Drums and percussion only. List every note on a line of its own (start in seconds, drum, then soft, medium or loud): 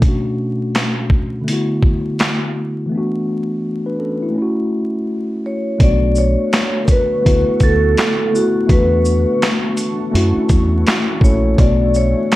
0.02 kick loud
0.02 closed hi-hat medium
0.75 snare loud
0.75 clap medium
0.75 closed hi-hat medium
1.10 kick medium
1.48 closed hi-hat medium
1.82 kick medium
2.19 snare loud
2.19 clap medium
2.19 closed hi-hat soft
5.80 kick loud
5.80 closed hi-hat medium
6.15 shaker soft
6.53 snare loud
6.53 clap loud
6.53 closed hi-hat medium
6.88 kick medium
6.88 closed hi-hat medium
6.88 shaker medium
7.26 kick medium
7.26 closed hi-hat medium
7.60 kick medium
7.60 closed hi-hat soft
7.60 shaker soft
7.97 snare loud
7.97 clap medium
7.97 closed hi-hat medium
8.35 shaker medium
8.69 kick loud
8.69 closed hi-hat medium
9.05 shaker soft
9.42 snare loud
9.42 clap medium
9.42 closed hi-hat medium
9.77 closed hi-hat medium
9.77 shaker medium
10.15 closed hi-hat medium
10.49 kick medium
10.49 closed hi-hat soft
10.49 shaker soft
10.86 snare loud
10.86 clap medium
10.86 closed hi-hat medium
11.21 kick medium
11.21 shaker soft
11.58 kick loud
11.58 closed hi-hat medium
11.94 shaker soft
12.32 snare loud
12.32 clap loud
12.32 closed hi-hat medium